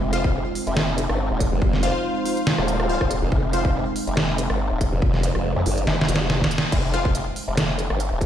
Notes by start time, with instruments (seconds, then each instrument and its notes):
Already playing: wobble bass F1, ambient pad G#3 C4 D#4
0.13 supersaw synth F4 C5 F5, closed hi-hat
0.24 kick
0.34 wobble bass F1
0.55 open hi-hat
0.67 wobble bass F1, closed hi-hat
0.77 snare
0.98 closed hi-hat
1.09 wobble bass G1, cross-stick
1.31 wobble bass D#1
1.40 kick, closed hi-hat
1.52 wobble bass F1
1.62 kick
1.73 snare
1.83 supersaw synth F4 C5 F5, closed hi-hat
2.26 open hi-hat
2.37 closed hi-hat
2.47 snare
2.58 wobble bass D#1, cross-stick
2.68 closed hi-hat
2.80 cross-stick
2.89 supersaw synth F4 C5 F5
3.01 wobble bass D#1, kick, cross-stick
3.11 closed hi-hat
3.22 wobble bass F1
3.32 wobble bass F1, kick
3.53 supersaw synth F4 C5 F5, closed hi-hat
3.65 kick
3.74 wobble bass F1
3.96 open hi-hat
4.07 wobble bass F1, closed hi-hat
4.17 snare
4.38 closed hi-hat
4.50 wobble bass G1, cross-stick
4.71 wobble bass D#1
4.81 kick, closed hi-hat
4.92 wobble bass F1
5.02 kick
5.14 snare
5.23 closed hi-hat
5.35 wobble bass F1, cross-stick
5.56 wobble bass F2
5.66 wobble bass G1, open hi-hat
5.78 closed hi-hat
5.87 wobble bass F1, snare
6.01 snare
6.09 wobble bass F1, closed hi-hat
6.16 snare
6.30 snare
6.41 kick, snare
6.51 closed hi-hat
6.58 snare
6.72 wobble bass F1, kick, closed hi-hat, crash
6.94 supersaw synth F4 C5 F5, closed hi-hat
7.05 kick
7.15 wobble bass F1, closed hi-hat
7.36 open hi-hat
7.48 wobble bass F1
7.57 snare, closed hi-hat
7.79 closed hi-hat
7.90 wobble bass G1, cross-stick
8.00 closed hi-hat
8.12 wobble bass D#1
8.21 kick, closed hi-hat